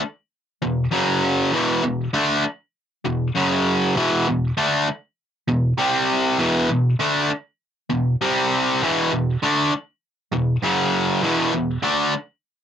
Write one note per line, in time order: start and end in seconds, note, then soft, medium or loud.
0.62 0.86 E2 medium
0.62 0.86 B2 medium
0.91 1.52 F#2 medium
0.91 1.52 C#3 medium
0.91 1.52 F#3 loud
1.53 1.82 E2 medium
1.53 1.82 B2 loud
1.53 1.83 E3 loud
1.83 2.08 E2 medium
1.83 2.08 B2 medium
2.14 2.43 D3 medium
2.14 2.43 A3 medium
2.14 2.44 D4 medium
3.05 3.29 E2 medium
3.05 3.29 B2 medium
3.35 3.95 F#2 medium
3.35 3.96 C#3 medium
3.35 3.96 F#3 medium
3.96 4.26 E2 medium
3.96 4.26 B2 medium
3.96 4.26 E3 medium
4.28 4.52 E2 medium
4.28 4.52 B2 medium
4.57 4.87 D3 medium
4.57 4.87 A3 loud
4.57 4.87 D4 medium
5.48 5.72 E2 medium
5.48 5.73 B2 medium
5.78 6.38 C3 medium
5.78 6.38 G3 loud
5.78 6.39 C4 loud
6.38 6.68 E2 medium
6.38 6.69 B2 medium
6.38 6.69 E3 loud
6.69 6.94 E2 medium
6.69 6.94 B2 medium
7.00 7.29 D3 medium
7.00 7.30 A3 medium
7.00 7.30 D4 loud
7.90 8.14 E2 medium
7.90 8.15 B2 medium
8.21 8.81 C3 medium
8.21 8.81 G3 loud
8.21 8.81 C4 loud
8.82 9.11 E2 loud
8.82 9.11 B2 medium
8.82 9.12 E3 loud
9.12 9.36 E2 medium
9.12 9.36 B2 medium
9.43 9.72 D3 loud
9.43 9.72 A3 medium
9.43 9.72 D4 loud
10.33 10.57 E2 medium
10.33 10.57 B2 medium
10.63 11.22 F#2 medium
10.63 11.23 C#3 medium
10.63 11.23 F#3 loud
11.22 11.52 E2 loud
11.22 11.52 B2 medium
11.22 11.53 E3 medium
11.53 11.77 E2 medium
11.53 11.77 B2 medium
11.83 12.12 D3 medium
11.83 12.13 A3 loud
11.83 12.13 D4 loud